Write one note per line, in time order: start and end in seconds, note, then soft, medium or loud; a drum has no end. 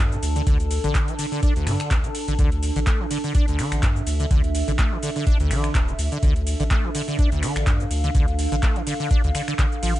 0.00 0.13 D2 medium
0.00 0.17 G2 medium
0.00 10.00 D4 medium
0.00 10.00 A4 medium
0.00 3.54 A5 medium
0.12 0.18 D3 medium
0.12 cabasa soft
0.23 0.41 D2 loud
0.23 open hi-hat loud
0.23 ride medium
0.23 cabasa medium
0.36 0.42 D3 medium
0.36 closed hi-hat medium
0.36 cabasa soft
0.47 0.79 D2 loud
0.47 0.58 D3 loud
0.47 kick loud
0.47 closed hi-hat medium
0.47 cabasa soft
0.60 closed hi-hat soft
0.60 cabasa soft
0.71 open hi-hat loud
0.71 ride medium
0.71 cabasa medium
0.84 0.92 A1 medium
0.84 1.09 D3 loud
0.84 closed hi-hat medium
0.84 cabasa soft
0.95 kick loud
0.95 clap loud
0.95 closed hi-hat medium
0.95 cabasa soft
1.08 1.14 E3 medium
1.08 closed hi-hat soft
1.08 cabasa soft
1.19 1.26 D3 medium
1.19 open hi-hat loud
1.19 ride medium
1.19 cabasa medium
1.32 1.41 D3 medium
1.32 open hi-hat medium
1.32 cabasa soft
1.43 1.54 D4 loud
1.43 kick loud
1.43 closed hi-hat medium
1.43 cabasa soft
1.56 1.68 D2 loud
1.56 closed hi-hat soft
1.56 cabasa soft
1.67 1.77 G2 medium
1.67 1.92 D3 loud
1.67 finger snap medium
1.67 open hi-hat loud
1.67 ride medium
1.67 cabasa medium
1.80 finger snap medium
1.80 closed hi-hat medium
1.80 cabasa soft
1.91 2.05 D2 medium
1.91 kick loud
1.91 clap loud
1.91 closed hi-hat medium
1.91 cabasa soft
2.04 2.10 D3 medium
2.04 closed hi-hat soft
2.04 cabasa soft
2.15 open hi-hat loud
2.15 ride medium
2.15 cabasa medium
2.28 2.36 A1 loud
2.28 2.34 D3 medium
2.28 closed hi-hat medium
2.28 cabasa soft
2.39 2.71 D2 loud
2.39 2.50 D3 loud
2.39 kick loud
2.39 closed hi-hat medium
2.39 cabasa soft
2.52 closed hi-hat soft
2.63 open hi-hat loud
2.63 ride medium
2.63 cabasa medium
2.76 2.84 A1 loud
2.76 2.79 D3 loud
2.76 closed hi-hat medium
2.76 cabasa soft
2.87 3.02 A3 medium
2.87 kick loud
2.87 clap loud
2.87 closed hi-hat medium
2.87 cabasa soft
3.00 3.06 E3 medium
3.11 3.18 D3 medium
3.11 open hi-hat loud
3.11 ride medium
3.11 cabasa medium
3.24 3.33 D3 medium
3.24 open hi-hat medium
3.24 cabasa soft
3.35 3.46 D4 loud
3.35 kick loud
3.35 closed hi-hat medium
3.35 cabasa soft
3.48 3.60 D2 loud
3.48 closed hi-hat soft
3.48 cabasa soft
3.52 7.38 E5 medium
3.59 3.84 D3 loud
3.59 finger snap medium
3.59 open hi-hat loud
3.59 ride medium
3.59 cabasa medium
3.72 3.80 A1 loud
3.72 finger snap medium
3.72 closed hi-hat medium
3.72 cabasa soft
3.83 3.97 D2 medium
3.83 4.01 G2 medium
3.83 kick loud
3.83 clap loud
3.83 closed hi-hat medium
3.83 cabasa soft
3.96 4.02 D3 medium
3.96 cabasa soft
4.07 4.25 D2 loud
4.07 open hi-hat loud
4.07 ride medium
4.07 cabasa medium
4.20 4.26 D3 medium
4.20 closed hi-hat medium
4.20 cabasa soft
4.31 4.63 D2 loud
4.31 4.42 D3 loud
4.31 kick loud
4.31 closed hi-hat medium
4.31 cabasa soft
4.44 closed hi-hat soft
4.55 open hi-hat loud
4.55 ride medium
4.55 cabasa medium
4.68 4.76 A1 medium
4.68 4.71 D3 loud
4.68 closed hi-hat medium
4.68 cabasa soft
4.79 4.93 A3 medium
4.79 kick loud
4.79 clap loud
4.79 closed hi-hat medium
4.79 cabasa soft
4.92 4.98 E3 medium
5.03 5.10 D3 medium
5.03 open hi-hat loud
5.03 ride medium
5.03 cabasa medium
5.16 5.25 D3 medium
5.16 open hi-hat medium
5.16 cabasa soft
5.27 5.38 D4 loud
5.27 kick loud
5.27 closed hi-hat medium
5.27 cabasa soft
5.40 5.48 D2 medium
5.40 5.52 D2 loud
5.40 closed hi-hat soft
5.40 cabasa soft
5.51 5.69 A1 medium
5.51 5.76 D3 loud
5.51 finger snap medium
5.51 open hi-hat loud
5.51 ride medium
5.51 cabasa medium
5.64 finger snap medium
5.64 closed hi-hat medium
5.64 cabasa soft
5.75 5.93 D1 medium
5.75 5.89 D2 medium
5.75 kick loud
5.75 clap loud
5.75 closed hi-hat medium
5.75 cabasa soft
5.88 5.94 D3 medium
5.88 cabasa soft
5.99 6.09 D2 loud
5.99 open hi-hat loud
5.99 ride medium
5.99 cabasa medium
6.12 6.18 D3 medium
6.12 closed hi-hat medium
6.12 cabasa soft
6.23 6.55 D2 loud
6.23 6.34 D3 loud
6.23 kick loud
6.23 closed hi-hat medium
6.23 cabasa soft
6.36 closed hi-hat soft
6.47 open hi-hat loud
6.47 ride medium
6.47 cabasa medium
6.60 6.68 A1 loud
6.60 6.63 D3 loud
6.60 closed hi-hat medium
6.60 cabasa soft
6.71 6.85 A3 medium
6.71 kick loud
6.71 clap loud
6.71 closed hi-hat medium
6.71 cabasa soft
6.84 6.90 E3 medium
6.95 7.02 D3 medium
6.95 open hi-hat loud
6.95 ride medium
6.95 cabasa medium
7.08 7.17 D3 medium
7.08 open hi-hat medium
7.08 cabasa soft
7.19 7.30 D4 loud
7.19 kick loud
7.19 closed hi-hat medium
7.19 cabasa soft
7.32 7.44 D2 loud
7.32 closed hi-hat soft
7.32 cabasa soft
7.36 10.00 F5 medium
7.43 7.68 D3 loud
7.43 finger snap medium
7.43 open hi-hat loud
7.43 ride medium
7.43 cabasa medium
7.56 7.64 A1 loud
7.56 finger snap medium
7.56 closed hi-hat medium
7.56 cabasa soft
7.67 7.81 D2 medium
7.67 7.85 G2 medium
7.67 kick loud
7.67 clap loud
7.67 closed hi-hat medium
7.67 cabasa soft
7.80 7.86 D3 medium
7.80 cabasa soft
7.91 8.09 D2 loud
7.91 open hi-hat loud
7.91 ride medium
7.91 cabasa medium
8.04 8.10 D3 medium
8.04 closed hi-hat medium
8.04 cabasa soft
8.15 8.47 D2 loud
8.15 8.26 D3 loud
8.15 kick loud
8.15 closed hi-hat medium
8.15 cabasa soft
8.28 closed hi-hat soft
8.39 open hi-hat loud
8.39 ride medium
8.39 cabasa medium
8.52 8.60 A1 loud
8.52 8.55 D3 loud
8.52 closed hi-hat medium
8.52 cabasa soft
8.63 8.77 A3 medium
8.63 kick loud
8.63 clap loud
8.63 closed hi-hat medium
8.63 cabasa soft
8.76 8.82 E3 medium
8.76 closed hi-hat soft
8.87 8.94 D3 medium
8.87 open hi-hat loud
8.87 ride medium
8.87 cabasa medium
9.00 9.09 D3 medium
9.00 open hi-hat medium
9.00 cabasa soft
9.11 9.22 D4 loud
9.11 kick loud
9.11 closed hi-hat medium
9.11 cabasa soft
9.24 9.30 D2 loud
9.24 9.32 D2 medium
9.24 closed hi-hat soft
9.24 cabasa soft
9.35 9.42 D3 medium
9.35 finger snap medium
9.35 open hi-hat loud
9.35 ride medium
9.35 cabasa medium
9.48 9.54 D3 medium
9.48 finger snap medium
9.48 closed hi-hat medium
9.48 cabasa soft
9.59 9.66 D3 medium
9.59 kick loud
9.59 clap loud
9.59 closed hi-hat medium
9.59 cabasa soft
9.72 cabasa soft
9.83 10.00 A1 loud
9.83 9.94 F3 medium
9.83 open hi-hat loud
9.83 ride medium
9.83 cabasa medium
9.96 closed hi-hat medium
9.96 cabasa soft